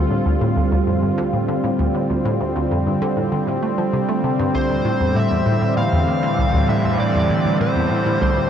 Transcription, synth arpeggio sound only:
0.11 A2
0.26 D2
0.41 A2
0.56 D2
0.72 D2
0.87 F2
1.03 G2
1.18 D3
1.33 A2
1.48 D3
1.64 A2
1.79 D2
1.95 A2
2.10 D2
2.25 A2
2.40 D2
2.56 D2
2.71 F2
2.87 G2
3.02 D3
3.17 A2
3.32 D3
3.47 A2
3.63 A3
3.78 F3
3.93 C3
4.09 A3
4.24 C3
4.39 G2
4.54 C2
4.69 D2
4.85 A2
5.00 E2
5.15 A2
5.31 E2
5.46 A2
5.62 A2
5.77 A2
5.92 E2
6.08 A2
6.23 A2
6.38 C2
6.54 D2
6.69 A2
6.84 E2
6.99 A2
7.15 E2
7.30 A2
7.45 A2
7.61 A2
7.76 E2
7.91 A2
8.06 A2
8.21 C2
8.37 D2

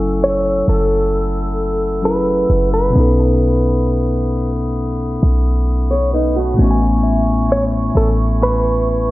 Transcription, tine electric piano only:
Already playing: F#3 C#4 E4 A4 G#5
2.02 F#3 C#4 E4 G#4
2.07 B4
2.90 B2 B3
2.95 C#4 D#4
3.00 A4
6.54 A2 A3
6.59 B3 C#4
6.64 F#4
6.71 G#5

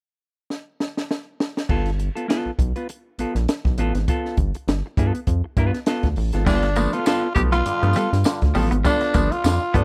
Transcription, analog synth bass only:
1.69 G1
2.46 B1
2.59 B1
3.18 A#1
3.35 A#1
3.65 B1
3.78 A1
3.95 G#1
4.37 G1
4.68 G1
4.97 G2
5.27 F2
5.57 G2
6.03 D2
6.17 A1
6.34 G#1
6.47 G1
7.36 B1
7.66 G2
7.83 G2
8.13 G2
8.42 D2
8.56 A1
8.72 G#1
9.15 G1
9.44 F2
9.74 G2

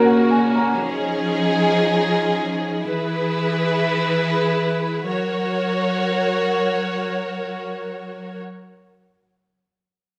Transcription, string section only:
Already playing: A#3 C#4 F#4
0.80 F3 D#4 G#4
2.85 E3 E4 G#4 B4
5.08 F#3 F#4 A#4 C#5

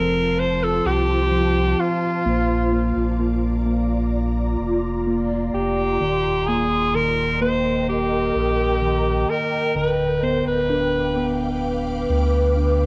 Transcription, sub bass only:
Already playing: F1
0.85 C2
2.26 A#1
2.96 A#1
4.60 F1
5.54 F1
6.01 D#1
8.35 A#1
9.75 D1
10.45 D1
12.09 D2

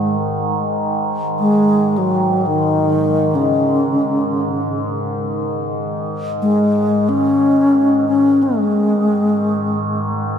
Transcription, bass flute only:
Already playing: G#3
1.39 G#3
1.98 F#3
2.46 D#3
3.35 C#3
6.42 G#3
7.09 C#4
8.08 C#4
8.43 G#3

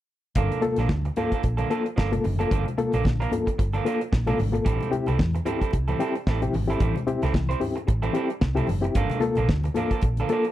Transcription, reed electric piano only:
0.36 G2 D3
0.62 A#3 F4 A4
0.78 F4 A4
0.90 G2 D3
1.17 A#3 F4 A4
1.32 F4 A4
1.44 F4 A4
1.59 G2 D3
1.70 A#3 F4 A4
2.12 A#3 F4 A4
2.24 G2 D3
2.40 A#3 F4 A4
2.51 G2 D3
2.78 A#3 F4 A4
2.92 F4 A4
3.04 G2 D3
3.32 A#3 F4 A4
3.46 F4 A4
3.59 F4 A4
3.74 G2 D3
3.85 A#3 F4 A4
4.26 A#3 F4 A4
4.38 G2 D3
4.52 A#3 F4 A4
4.64 A2 E3
4.91 C4 E4 G4
5.07 E4 G4
5.19 A2 E3
5.45 C4 E4 G4
5.61 E4 G4
5.72 E4 G4
5.89 A2 E3
5.99 C4 E4 G4
6.42 C4 E4 G4
6.53 A2 E3
6.67 C4 E4 G4
6.80 A2 E3
7.07 C4 E4 G4
7.22 E4 G4
7.34 A2 E3
7.60 C4 E4 G4
7.75 E4 G4
7.87 E4 G4
8.03 A2 E3
8.13 C4 E4 G4
8.55 C4 E4 G4
8.68 A2 E3
8.81 C4 E4 G4
8.95 G2 D3
9.20 A#3 F4 A4
9.37 F4 A4
9.48 G2 D3
9.74 A#3 F4 A4
9.90 F4 A4
10.03 F4 A4
10.18 G2 D3
10.29 A#3 F4 A4

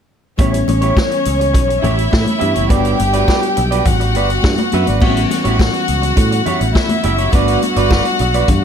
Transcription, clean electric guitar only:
0.39 E4 G4 C#5
0.53 muted clean electric guitar stroke
0.68 muted clean electric guitar stroke
0.81 E4 G4 C#5
1.11 muted clean electric guitar stroke
1.40 muted clean electric guitar stroke
1.54 muted clean electric guitar stroke
1.68 muted clean electric guitar stroke
1.82 E4 G4 C#5
1.97 muted clean electric guitar stroke
2.11 muted clean electric guitar stroke
2.24 muted clean electric guitar stroke
2.39 E4 G4 E5
2.54 E4 G4 C#5
2.69 F#4 B4 D5
2.99 muted clean electric guitar stroke
3.13 F#4 B4 D5
3.28 F#4 B4 D5
3.41 muted clean electric guitar stroke
3.56 muted clean electric guitar stroke
3.71 F#4 B4 D5
3.86 muted clean electric guitar stroke
4.00 muted clean electric guitar stroke
4.16 F#4 B4 D5
4.30 muted clean electric guitar stroke
4.44 muted clean electric guitar stroke
4.59 muted clean electric guitar stroke
4.73 F#4 B4 E5
4.87 F#4 B4 D5
5.01 E4 G4 C#5
5.16 muted clean electric guitar stroke
5.30 muted clean electric guitar stroke
5.44 E4 G4 C#5
5.73 muted clean electric guitar stroke
6.02 muted clean electric guitar stroke
6.16 muted clean electric guitar stroke
6.31 muted clean electric guitar stroke
6.46 E4 G4 C#5
6.61 muted clean electric guitar stroke
6.75 muted clean electric guitar stroke
6.89 muted clean electric guitar stroke
7.04 E4 G4 E5
7.18 E4 G4 C#5
7.34 F#4 B4 D5
7.77 F#4 B4 D5
7.92 F#4 B4 D5
8.06 muted clean electric guitar stroke
8.20 muted clean electric guitar stroke
8.34 F#4 B4 D5
8.48 muted clean electric guitar stroke

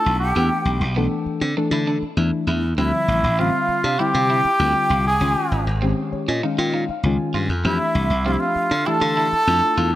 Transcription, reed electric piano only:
Already playing: A3 D4 E4 F4
0.36 E3 A3 D4 G4
0.97 E3 A3 D4 A4
1.58 E3 A3 D4 A4
2.17 E3 A3 D4 E4
2.78 D3 F3 G3 C4
3.40 D3 G3 C4 F4
4.00 D3 G3 C4 E4
4.60 D3 G3 C4 F4
5.22 D#3 G#3 C#4 F4
5.83 D#3 G#3 C#4 G4
6.12 C#5
6.29 D#5
6.43 D#3 G#3 C#4 D#4 F5
6.59 G5
6.74 F5
6.90 F5
7.05 D#3 G#3 C#4 F4 G#5
7.65 E3 A3 D4 G4
8.27 F3 A3 D4 G4
8.87 E3 A3 D4 G4
9.49 A3 D4 E4 F4

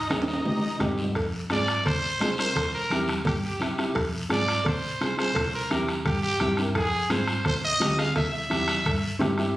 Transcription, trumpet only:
1.51 D5
1.86 C5
2.40 C5
2.74 A#4
3.27 G4
3.45 G4
4.32 D5
4.68 C5
5.19 C5
5.55 A#4
6.06 G4
6.23 G4
6.76 G#4
7.12 C5
7.47 C5
7.64 D#5
7.99 F5
8.16 E5
8.33 E5

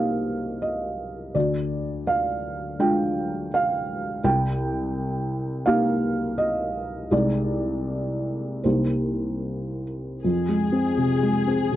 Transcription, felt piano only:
Already playing: C2 A#3 D#4 G4 C5 D#5 F5
0.62 D#5
1.35 D2 D5
2.07 F5
2.79 G#3 D4 F4 G5
3.54 F5
4.24 C2 G5
5.66 A#3 D#4 G4 F5
6.38 D#5
7.11 C2 G#3 D#4 G#4 D5
8.64 C2 A#3 D#4 G4 C5
10.24 F2
10.49 G#3
10.72 C4
10.97 C3
11.23 G#3
11.47 C4
11.72 C3

